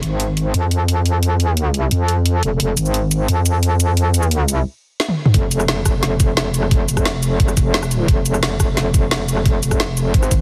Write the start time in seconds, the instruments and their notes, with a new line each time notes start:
0.03 wobble bass G#1, closed hi-hat
0.20 closed hi-hat
0.37 closed hi-hat
0.54 wobble bass F2, closed hi-hat
0.71 closed hi-hat
0.88 closed hi-hat
1.06 closed hi-hat
1.23 closed hi-hat
1.40 closed hi-hat
1.52 wobble bass D#2
1.57 closed hi-hat
1.74 wobble bass C#2, closed hi-hat
1.91 wobble bass F2, closed hi-hat
2.08 closed hi-hat
2.26 closed hi-hat
2.43 wobble bass F1, closed hi-hat
2.60 wobble bass F1, closed hi-hat
2.77 wobble bass G#1, closed hi-hat, cabasa
2.86 cabasa
2.94 closed hi-hat
3.11 closed hi-hat, cabasa
3.28 wobble bass F2, closed hi-hat
3.46 closed hi-hat, cabasa
3.63 closed hi-hat
3.80 closed hi-hat, cabasa
3.97 closed hi-hat
4.14 closed hi-hat, cabasa
4.23 wobble bass D#2, cabasa
4.31 closed hi-hat
4.48 wobble bass C#2, closed hi-hat, cabasa
5.00 snare
5.08 high tom
5.26 mid tom
5.34 wobble bass F1, kick, closed hi-hat
5.51 closed hi-hat, cabasa
5.60 cross-stick, cabasa
5.68 snare, closed hi-hat
5.86 wobble bass F1, kick, cross-stick, closed hi-hat, cabasa
6.03 wobble bass F1, snare, closed hi-hat
6.20 kick, closed hi-hat, cabasa
6.37 snare, closed hi-hat
6.54 closed hi-hat, cabasa
6.63 cross-stick
6.71 kick, closed hi-hat
6.88 wobble bass F1, closed hi-hat, cabasa
6.97 kick, cross-stick, cabasa
7.05 snare, closed hi-hat
7.23 closed hi-hat, cabasa
7.40 wobble bass F1, kick, closed hi-hat
7.48 cross-stick, cabasa
7.57 wobble bass F1, kick, closed hi-hat, cabasa
7.74 snare, closed hi-hat
7.83 cross-stick, cabasa
7.91 closed hi-hat, cabasa
8.08 wobble bass F1, kick, closed hi-hat
8.26 closed hi-hat, cabasa
8.34 cross-stick, cabasa
8.43 snare, closed hi-hat
8.60 wobble bass F1, kick, cross-stick, closed hi-hat, cabasa
8.77 wobble bass F1, snare, closed hi-hat
8.94 kick, closed hi-hat, cabasa
9.11 snare, closed hi-hat
9.28 closed hi-hat, cabasa
9.37 cross-stick
9.46 kick, closed hi-hat
9.63 wobble bass F1, closed hi-hat, cabasa
9.71 kick, cross-stick, cabasa
9.80 snare, closed hi-hat
9.97 closed hi-hat, cabasa
10.14 wobble bass G#1, kick, closed hi-hat
10.23 cross-stick, cabasa
10.31 kick, closed hi-hat, cabasa